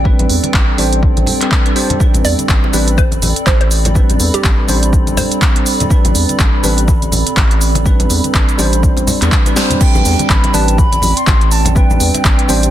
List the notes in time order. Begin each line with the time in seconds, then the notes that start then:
Already playing: A1 C4 A4 D5 G5
0.04 G3 C4 D4 B4, kick
0.19 A1, closed hi-hat, low conga
0.30 E2, open hi-hat
0.43 closed hi-hat, high conga
0.54 A1, kick, clap
0.77 A1 G3 C4 D4 C5, open hi-hat
0.93 closed hi-hat
1.03 kick
1.17 A1, closed hi-hat, high conga
1.26 open hi-hat, low conga
1.41 G3 C4 D4 B4, clap, closed hi-hat
1.52 kick, clap, high conga
1.65 G3 C4 D4 B4, closed hi-hat
1.75 G3 C4 D4 C5, open hi-hat
1.90 closed hi-hat, high conga, low conga
1.99 G3 C4 D4 B4 B5, kick, cabasa
2.14 A1, closed hi-hat, muted conga, low conga, cabasa
2.25 E2 D5, open hi-hat, cabasa
2.38 closed hi-hat, high conga, cabasa
2.49 A1, kick, clap, cabasa
2.64 muted conga
2.73 A1 G3 C4 D4 B4, open hi-hat, high conga, cabasa
2.88 closed hi-hat, cabasa
2.98 C5, kick, muted conga, cabasa
3.12 closed hi-hat, high conga, cabasa
3.22 A1, open hi-hat, low conga, cabasa
3.36 closed hi-hat, cabasa
3.46 A1 C5, kick, clap, muted conga, high conga, cabasa
3.61 C5, closed hi-hat
3.71 open hi-hat, cabasa
3.85 closed hi-hat, muted conga, high conga, low conga, cabasa
3.94 G3 C4 D4 B4, kick, cabasa
4.10 A1, closed hi-hat, low conga, cabasa
4.20 E2, open hi-hat, cabasa
4.34 G4, closed hi-hat, muted conga, high conga, cabasa
4.44 A1, kick, clap, cabasa
4.68 A1 G3 C4 D4 C5, open hi-hat, muted conga, cabasa
4.83 closed hi-hat, cabasa
4.93 kick, cabasa
5.07 closed hi-hat, high conga, cabasa
5.17 C5, open hi-hat, muted conga, low conga, cabasa
5.32 closed hi-hat, cabasa
5.41 kick, clap, high conga, cabasa
5.56 closed hi-hat, muted conga
5.66 open hi-hat, cabasa
5.80 closed hi-hat, high conga, low conga, cabasa
5.90 G3 C4 D4 B4, kick, cabasa
6.05 A1, closed hi-hat, muted conga, low conga, cabasa
6.15 E2, open hi-hat, cabasa
6.29 closed hi-hat, high conga, cabasa
6.39 A1, kick, clap, muted conga, cabasa
6.63 A1 G3 C4 D4 B4, open hi-hat, high conga, cabasa
6.78 closed hi-hat, cabasa
6.88 kick, muted conga, cabasa
7.02 closed hi-hat, high conga, cabasa
7.12 A1, open hi-hat, low conga, cabasa
7.27 closed hi-hat, muted conga, cabasa
7.37 A1, kick, clap, high conga, cabasa
7.51 closed hi-hat
7.61 open hi-hat, cabasa
7.75 closed hi-hat, muted conga, high conga, low conga, cabasa
7.85 G3 C4 D4 B4, kick, cabasa
8.00 A1, closed hi-hat, low conga, cabasa
8.09 E2, open hi-hat, muted conga, cabasa
8.24 closed hi-hat, high conga, cabasa
8.34 A1, kick, clap, cabasa
8.49 closed hi-hat, cabasa
8.58 A1 G3 C4 D4 C5, open hi-hat, muted conga, cabasa
8.73 closed hi-hat, cabasa
8.83 kick, cabasa
8.97 closed hi-hat, muted conga, high conga, cabasa
9.07 open hi-hat, low conga, cabasa
9.21 E2 G3 C4 D4 B4, clap, closed hi-hat, cabasa
9.32 kick, clap, high conga, cabasa
9.46 G3 C4 D4 B4, closed hi-hat, muted conga, cabasa
9.56 G3 C4 D4 C5, snare, open hi-hat, cabasa
9.70 closed hi-hat, high conga, low conga, cabasa
9.80 G3 C4 D4 B4 D5 G5, kick, crash, cabasa
9.95 A1, muted conga, low conga, cabasa
10.05 E2, open hi-hat, cabasa
10.19 closed hi-hat, high conga, cabasa
10.30 A1 B5, kick, clap, cabasa
10.44 closed hi-hat, muted conga
10.53 A1 G3 C4 D4 B4 A5, open hi-hat, high conga, cabasa
10.68 closed hi-hat, cabasa
10.78 B5, kick, muted conga, cabasa
10.92 closed hi-hat, high conga, cabasa
11.02 A1, open hi-hat, low conga, cabasa
11.17 C6, closed hi-hat, cabasa
11.27 A1, kick, clap, muted conga, high conga, cabasa
11.41 closed hi-hat
11.51 A5, open hi-hat, cabasa
11.65 closed hi-hat, muted conga, high conga, low conga, cabasa
11.75 G3 C4 D4 B4 G5, kick, cabasa
11.90 A1, low conga, cabasa
12.00 E2, open hi-hat, cabasa
12.14 closed hi-hat, muted conga, high conga, cabasa
12.25 A1, kick, clap, cabasa
12.39 closed hi-hat
12.48 A1 G3 C4 D4 C5, open hi-hat, muted conga, cabasa
12.63 closed hi-hat, cabasa